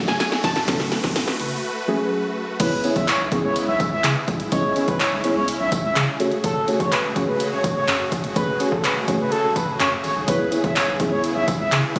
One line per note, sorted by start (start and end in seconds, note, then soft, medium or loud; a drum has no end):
0.00 0.34 F#3 medium
0.00 0.34 A3 medium
0.00 2.56 A3 medium
0.00 0.34 C#4 medium
0.00 2.56 F#4 medium
0.00 0.34 G#4 medium
0.00 0.40 C#5 medium
0.00 riser medium
0.08 0.17 F#1 medium
0.08 0.19 G#5 loud
0.08 snare loud
0.20 0.45 G#5 loud
0.20 snare loud
0.20 closed hi-hat medium
0.20 tambourine medium
0.32 snare loud
0.44 0.61 E1 medium
0.44 2.58 B4 medium
0.44 1.12 A5 loud
0.44 kick loud
0.44 snare loud
0.44 closed hi-hat medium
0.44 tambourine medium
0.56 snare loud
0.56 closed hi-hat medium
0.68 0.94 F#1 loud
0.68 1.19 F#3 medium
0.68 1.19 A3 medium
0.68 1.19 C#4 medium
0.68 1.19 A4 medium
0.68 kick loud
0.68 snare loud
0.68 closed hi-hat loud
0.68 tambourine soft
0.80 snare loud
0.92 snare loud
0.92 closed hi-hat medium
0.92 tambourine medium
1.04 1.13 E1 medium
1.04 kick medium
1.04 snare loud
1.04 closed hi-hat medium
1.16 snare loud
1.16 closed hi-hat loud
1.16 tambourine medium
1.28 snare loud
1.40 1.57 F#1 loud
1.40 closed hi-hat medium
1.40 tambourine soft
1.88 2.26 F#3 loud
1.88 2.26 A3 medium
1.88 2.26 C#4 medium
1.88 2.26 G#4 loud
2.60 2.77 C#2 loud
2.60 6.16 G#3 medium
2.60 2.73 B3 medium
2.60 2.73 C#4 medium
2.60 2.73 E4 medium
2.60 2.73 G#4 medium
2.60 2.80 B4 loud
2.60 2.73 C#5 medium
2.60 kick loud
2.60 closed hi-hat loud
2.60 crash loud
2.60 tambourine soft
2.84 3.09 B3 medium
2.84 3.09 C#4 medium
2.84 3.10 E4 medium
2.84 3.10 G#4 medium
2.84 3.10 C#5 medium
2.84 closed hi-hat medium
2.84 tambourine medium
2.96 3.05 C#2 loud
2.96 3.06 E5 medium
2.96 kick loud
2.96 closed hi-hat medium
3.08 3.18 C#5 medium
3.08 clap loud
3.08 closed hi-hat loud
3.08 tambourine medium
3.20 3.29 B1 medium
3.32 3.83 B3 medium
3.32 3.83 C#4 medium
3.32 3.83 E4 medium
3.32 3.83 G#4 medium
3.32 3.83 C#5 medium
3.32 kick loud
3.32 closed hi-hat medium
3.44 3.53 C#2 medium
3.44 3.54 C#5 medium
3.56 closed hi-hat loud
3.56 tambourine soft
3.68 3.77 B1 medium
3.68 3.78 E5 medium
3.80 kick medium
3.80 closed hi-hat medium
3.80 tambourine medium
3.92 4.01 C#2 medium
3.92 4.02 E5 medium
4.04 4.13 C#3 loud
4.04 clap loud
4.04 closed hi-hat loud
4.04 tambourine medium
4.28 4.36 C#2 loud
4.28 kick loud
4.28 closed hi-hat medium
4.28 tambourine medium
4.40 4.49 B1 loud
4.40 closed hi-hat medium
4.52 4.69 C#2 loud
4.52 4.65 B3 medium
4.52 4.65 C#4 medium
4.52 4.65 E4 medium
4.52 4.65 G#4 medium
4.52 4.72 C#5 loud
4.52 4.65 D#5 medium
4.52 kick loud
4.52 closed hi-hat loud
4.52 tambourine soft
4.76 5.01 B3 medium
4.76 5.01 C#4 medium
4.76 5.01 E4 medium
4.76 5.02 G#4 medium
4.76 5.02 C#5 medium
4.76 closed hi-hat medium
4.76 tambourine medium
4.88 4.97 C#2 medium
4.88 4.98 B4 medium
4.88 kick medium
4.88 closed hi-hat medium
5.00 5.10 C#5 medium
5.00 clap loud
5.00 closed hi-hat loud
5.00 tambourine medium
5.12 5.21 B1 medium
5.24 5.75 B3 medium
5.24 5.75 C#4 medium
5.24 5.75 E4 medium
5.24 5.75 G#4 medium
5.24 5.75 C#5 medium
5.24 closed hi-hat medium
5.36 5.45 C#2 medium
5.36 5.46 C#5 medium
5.48 closed hi-hat loud
5.48 tambourine soft
5.60 5.69 B1 medium
5.60 5.70 E5 medium
5.72 kick medium
5.72 closed hi-hat medium
5.72 tambourine medium
5.84 5.93 C#2 loud
5.84 5.94 E5 medium
5.96 6.05 C#3 loud
5.96 clap loud
5.96 closed hi-hat medium
5.96 tambourine medium
6.20 6.29 F#1 loud
6.20 6.58 A3 loud
6.20 10.24 A3 medium
6.20 6.58 C#4 medium
6.20 10.24 F#4 medium
6.20 6.58 F#4 medium
6.20 11.99 G#4 medium
6.20 6.58 G#4 medium
6.20 6.58 C#5 loud
6.20 closed hi-hat medium
6.20 tambourine medium
6.32 6.41 E1 medium
6.32 closed hi-hat medium
6.44 6.61 F#1 loud
6.44 6.65 A4 loud
6.44 kick loud
6.44 closed hi-hat loud
6.44 tambourine soft
6.68 6.93 A3 medium
6.68 6.93 C#4 medium
6.68 6.93 F#4 medium
6.68 6.93 G#4 medium
6.68 6.94 C#5 medium
6.68 closed hi-hat medium
6.68 tambourine medium
6.80 6.89 F#1 loud
6.80 6.90 C#5 medium
6.80 kick loud
6.80 closed hi-hat medium
6.92 7.02 B4 medium
6.92 clap loud
6.92 closed hi-hat loud
6.92 tambourine medium
7.04 7.13 E1 medium
7.16 7.67 A3 medium
7.16 7.67 C#4 medium
7.16 7.67 F#4 medium
7.16 7.67 G#4 medium
7.16 7.67 C#5 medium
7.16 kick medium
7.16 closed hi-hat medium
7.16 tambourine soft
7.28 7.37 F#1 medium
7.28 7.38 B4 medium
7.40 closed hi-hat loud
7.52 7.61 E1 medium
7.52 7.62 C#5 medium
7.64 kick medium
7.64 closed hi-hat medium
7.64 tambourine medium
7.76 7.85 F#1 loud
7.76 7.86 C#5 medium
7.88 7.97 F#2 loud
7.88 clap loud
7.88 closed hi-hat loud
7.88 tambourine medium
8.12 8.21 F#1 loud
8.12 kick medium
8.12 closed hi-hat medium
8.12 tambourine medium
8.24 8.33 E1 medium
8.24 closed hi-hat medium
8.36 8.53 F#1 loud
8.36 8.48 A3 medium
8.36 8.49 C#4 medium
8.36 8.49 F#4 medium
8.36 8.49 G#4 medium
8.36 8.56 B4 loud
8.36 8.49 C#5 medium
8.36 kick loud
8.36 closed hi-hat loud
8.36 tambourine soft
8.59 8.85 A3 medium
8.59 8.85 C#4 medium
8.59 8.85 F#4 medium
8.59 8.85 G#4 medium
8.59 8.86 C#5 medium
8.59 closed hi-hat medium
8.59 tambourine medium
8.72 8.81 F#1 medium
8.72 8.82 A4 medium
8.72 kick medium
8.84 8.94 B4 medium
8.84 clap loud
8.84 closed hi-hat loud
8.84 tambourine medium
8.96 9.05 E1 medium
9.08 9.59 A3 medium
9.08 9.59 C#4 medium
9.08 9.59 F#4 medium
9.08 9.59 G#4 medium
9.08 9.59 C#5 medium
9.08 kick loud
9.08 closed hi-hat medium
9.08 tambourine soft
9.20 9.29 F#1 medium
9.20 9.30 B4 medium
9.32 9.52 A4 loud
9.32 closed hi-hat loud
9.44 9.53 E1 loud
9.56 9.66 B4 medium
9.56 kick medium
9.56 closed hi-hat medium
9.56 tambourine medium
9.68 9.77 F#1 medium
9.80 9.89 F#2 loud
9.80 9.90 C#5 medium
9.80 clap loud
9.80 closed hi-hat loud
9.80 tambourine medium
10.04 10.13 G#1 loud
10.04 10.14 C#5 medium
10.04 open hi-hat medium
10.04 tambourine medium
10.16 10.25 B1 medium
10.28 10.45 C#2 loud
10.28 11.99 B3 medium
10.28 10.41 B3 medium
10.28 10.41 C#4 medium
10.28 11.99 E4 medium
10.28 10.41 E4 medium
10.28 10.41 G#4 medium
10.28 10.48 B4 loud
10.28 10.41 C#5 medium
10.28 kick loud
10.28 closed hi-hat loud
10.28 tambourine soft
10.51 10.77 B3 medium
10.51 10.77 C#4 medium
10.51 10.77 E4 medium
10.51 10.77 G#4 medium
10.51 10.77 C#5 medium
10.51 closed hi-hat medium
10.51 tambourine medium
10.64 10.73 C#2 loud
10.64 10.74 E5 medium
10.64 kick loud
10.64 closed hi-hat medium
10.75 10.86 C#5 medium
10.75 clap loud
10.75 closed hi-hat loud
10.75 tambourine medium
10.88 10.96 B1 loud
10.99 11.51 B3 medium
10.99 11.51 C#4 medium
10.99 11.51 E4 medium
10.99 11.51 G#4 medium
10.99 11.51 C#5 medium
10.99 kick loud
10.99 closed hi-hat medium
11.11 11.21 C#2 medium
11.11 11.22 C#5 medium
11.24 closed hi-hat loud
11.24 tambourine soft
11.35 11.45 B1 medium
11.35 11.46 E5 medium
11.48 kick medium
11.48 closed hi-hat medium
11.48 tambourine medium
11.60 11.69 C#2 medium
11.60 11.70 E5 medium
11.72 11.81 C#3 loud
11.72 clap loud
11.72 closed hi-hat loud
11.72 tambourine medium
11.96 11.99 C#2 loud
11.96 kick loud
11.96 closed hi-hat medium
11.96 tambourine medium